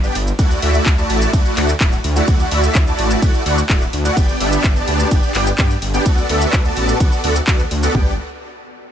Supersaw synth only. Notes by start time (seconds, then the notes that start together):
0.03 B3 D4 G4 D5 G5
0.39 A3 E4 F#4 D5 F#5
0.62 A3 E4 F#4 D5 E5
0.98 A3 E4 F#4 D5 A5
1.34 A3
1.57 A3 E4 F#4 D5 F#5
1.81 A3 E4 F#4 D5 F#5
2.16 A3 E4 F#4 D5 F#5
2.28 A3 F#4 F#5
2.52 A3 E4 F#4 D5 E5
2.87 A3 E4 F#4 D5 A5
3.22 A3 E4 F#4 D5 F#5
3.46 A3 E4 F#4 D5 F#5
3.70 A3 E4 F#4 D5 F#5
4.05 A3 E4 F#4 D5 F#5
4.17 B3 D4 G4 D5 G5
4.40 B3 D4 G4 D5 E5
4.76 B3 D4 G4 D5 A5
5.11 B3 D4 G4 D5 G5
5.35 B3 D4 G4 D5 G5
5.59 B3 D4 G4 D5 G5
5.94 B3 D4 G4 D5 G5
6.06 B3 F#4 A4 D5 F#5
6.29 B3 F#4 A4 D5 E5
6.65 B3 F#4 A4 D5 A5
7.00 B3 F#4 A4 F#5
7.24 B3 F#4 A4 D5 F#5
7.48 B3 F#4 A4 D5 F#5
7.83 B3 F#4 A4 D5 F#5
7.95 B3 D4 G4 D5 G5